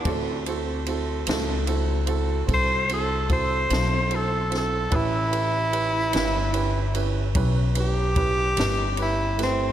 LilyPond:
<<
  \new Staff \with { instrumentName = "Tenor saxophone" } { \time 12/8 \key d \major \tempo 4. = 49 r2. c''8 a'8 c''4 a'8 a'8 | e'2. r8 g'4. e'8 c'8 | }
  \new Staff \with { instrumentName = "Upright piano" } { \time 12/8 \key d \major <c' e' fis' a'>8 <c' e' fis' a'>8 <c' e' fis' a'>8 <c' e' fis' a'>8 <c' e' fis' a'>8 <c' e' fis' a'>8 <c' e' fis' a'>8 <c' e' fis' a'>8 <c' e' fis' a'>8 <c' e' fis' a'>8 <c' e' fis' a'>8 <c' e' fis' a'>8 | <cis' e' g' b'>8 <cis' e' g' b'>8 <cis' e' g' b'>8 <cis' e' g' b'>8 <cis' e' g' b'>8 <cis' e' g' b'>8 <cis' e' g' b'>8 <cis' e' g' b'>8 <cis' e' g' b'>8 <cis' e' g' b'>8 <cis' e' g' b'>8 <a e' g' b'>8 | }
  \new Staff \with { instrumentName = "Upright bass" } { \clef bass \time 12/8 \key d \major d,4. cis,4. c,4. b,,4. | a,,4. g,,4. b,,4. g,,4. | }
  \new DrumStaff \with { instrumentName = "Drums" } \drummode { \time 12/8 <bd cymr>8 cymr8 cymr8 <cymr sn>8 cymr8 cymr8 <bd cymr>8 cymr8 <bd cymr>8 <cymr sn>8 cymr8 <cymr sn>8 | <bd cymr>8 cymr8 cymr8 <cymr sn>8 cymr8 cymr8 <bd cymr>8 cymr8 <bd cymr>8 <cymr sn>8 cymr8 <cymr sn>8 | }
>>